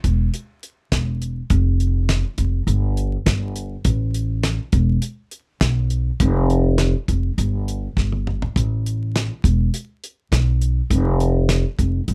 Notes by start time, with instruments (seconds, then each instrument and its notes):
0.04 upright bass E1, kick, closed hi-hat
0.34 closed hi-hat
0.63 closed hi-hat
0.92 upright bass E1, kick, snare, closed hi-hat
1.22 closed hi-hat
1.50 upright bass F1, kick, closed hi-hat
1.80 closed hi-hat
2.09 snare, closed hi-hat
2.38 upright bass F1, kick, closed hi-hat
2.67 upright bass G1, closed hi-hat
2.97 closed hi-hat
3.26 upright bass G1, kick, snare, closed hi-hat
3.56 closed hi-hat
3.85 upright bass A1, kick, closed hi-hat
4.14 closed hi-hat
4.43 snare, closed hi-hat
4.72 upright bass E1, kick, closed hi-hat
5.02 closed hi-hat
5.31 closed hi-hat
5.61 upright bass B1, kick, snare, closed hi-hat
5.90 closed hi-hat
6.20 upright bass F1, kick, closed hi-hat
6.50 closed hi-hat
6.78 snare, closed hi-hat
7.08 upright bass F1, kick, closed hi-hat
7.38 upright bass G1, closed hi-hat
7.68 closed hi-hat
7.97 upright bass G1, kick, snare
8.12 high tom
8.27 mid tom
8.42 floor tom
8.56 upright bass A1, kick, closed hi-hat
8.86 closed hi-hat
9.16 snare, closed hi-hat
9.44 upright bass E1, kick, closed hi-hat
9.74 closed hi-hat
10.04 closed hi-hat
10.32 upright bass B1, kick, snare, closed hi-hat
10.62 closed hi-hat
10.90 upright bass F1, kick, closed hi-hat
11.20 closed hi-hat
11.49 snare, closed hi-hat
11.79 upright bass F1, kick, closed hi-hat
12.08 upright bass G1, closed hi-hat